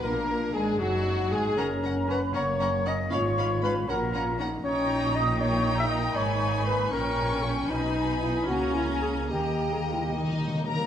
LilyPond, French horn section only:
\new Staff \with { instrumentName = "French horn section" } { \time 6/8 \key ges \major \tempo 4. = 78 d'4. ees'4. | des'4. bes4. | f'4. ges'8 f'8 ees'8 | \key dis \phrygian cis'4. ais4.~ |
ais4. des'4. | b4. ais4. | ais4. dis4 ais8 | }